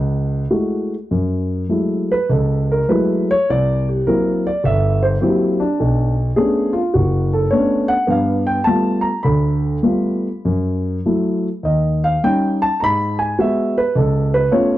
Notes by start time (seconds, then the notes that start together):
Already playing: C#2 D5 F#5
0.50 G#3 A3 E4 F#4
1.11 F#2
1.69 F#3 G#3 A3 E4
2.12 B4
2.29 C#2 A4
2.72 A#4
2.89 F#3 G#3 A3 E4 B4
3.31 C#5
3.50 C2 D5
3.89 G4
4.07 F#3 A#3 C4 E4 A#4
4.47 D5
4.64 G1 E5
5.03 C5
5.21 F#3 A#3 C4 E4 G4
5.60 D4
5.80 B1
6.36 A3 B3 C#4 D4 G#4
6.73 F4
6.94 F#1 F#4
7.33 A4
7.51 A3 B3 C#4 D4 C#5
7.88 F#5
8.07 G2 B3 F5
8.47 G5
8.64 G3 A3 B3 F4 A5
9.01 A#5
9.23 D2 D3 B5
9.83 G3 A3 B3 F4
10.45 F#2
11.06 F#3 A3 E4
11.63 D#2 D#5
12.04 F5
12.24 G3 C#4 D#4 G5
12.62 A5
12.80 G#2 A#5 B5
13.19 G#5
13.39 G#3 B3 F#4 E5
13.78 B4
13.95 C#2 A4
14.34 B4
14.51 A3 B3 C#4 F4 C#5